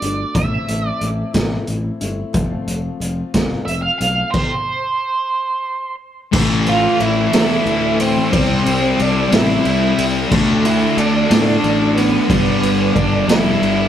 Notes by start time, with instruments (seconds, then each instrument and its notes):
Already playing: steel-string acoustic guitar D3, lead electric guitar D5
0.01 fingered electric bass G1, steel-string acoustic guitar A3 D4 F#4, closed hi-hat
0.34 fingered electric bass A1, steel-string acoustic guitar A2 E3 A3 C4 E4, lead electric guitar E5, kick, closed hi-hat
0.68 fingered electric bass A1, closed hi-hat
0.88 lead electric guitar D5
1.01 fingered electric bass A1, steel-string acoustic guitar E3 A3 C4 E4, closed hi-hat
1.33 fingered electric bass A1, steel-string acoustic guitar A2 E3 A3 C4 E4, kick, snare, closed hi-hat
1.67 fingered electric bass A1, closed hi-hat
2.00 fingered electric bass G1, steel-string acoustic guitar A3 C4 E4, closed hi-hat
2.33 fingered electric bass F1, steel-string acoustic guitar F3 A3 C4 F4, kick, closed hi-hat
2.67 fingered electric bass F1, closed hi-hat
3.00 fingered electric bass F1, steel-string acoustic guitar F3 A3 C4 F4, closed hi-hat
3.34 fingered electric bass F1, steel-string acoustic guitar F3 A3 C4 F4, kick, snare, closed hi-hat
3.65 fingered electric bass F1, lead electric guitar E5, closed hi-hat
3.82 lead electric guitar F5
3.99 fingered electric bass B1, steel-string acoustic guitar C4 F4, lead electric guitar F5, closed hi-hat
4.04 steel-string acoustic guitar A3
4.31 lead electric guitar C5, kick, crash
6.32 fingered electric bass A1, distorted electric guitar A2 E3 A3, kick, crash
6.66 lead electric guitar F4, ride
7.00 fingered electric bass A1, lead electric guitar E4, ride
7.32 fingered electric bass E2, distorted electric guitar A2 E3 A3, snare, ride
7.66 fingered electric bass D2, ride
8.00 lead electric guitar C4, ride
8.31 fingered electric bass C2, distorted electric guitar C3 G3 C4, kick, ride
8.66 fingered electric bass C2, ride
8.99 fingered electric bass C2, lead electric guitar D4, ride
9.31 fingered electric bass A1, distorted electric guitar C3 G3 C4, lead electric guitar E4, snare, ride
9.65 fingered electric bass C2, ride
9.98 fingered electric bass C2, ride
10.30 fingered electric bass D2, distorted electric guitar D3 A3 D4, kick, crash
10.65 lead electric guitar E4, ride
10.97 fingered electric bass D2, lead electric guitar D4, ride
11.29 fingered electric bass A2, distorted electric guitar D3 A3 D4, snare, ride
11.64 fingered electric bass A1, ride
11.96 lead electric guitar B3, ride
12.28 fingered electric bass G1, distorted electric guitar G2 D3 G3, kick, ride
12.62 fingered electric bass G1, ride
12.95 fingered electric bass G1, lead electric guitar D4, kick, ride
13.28 fingered electric bass F1, distorted electric guitar G2 D3 G3, lead electric guitar E4, snare, ride
13.62 fingered electric bass G1, ride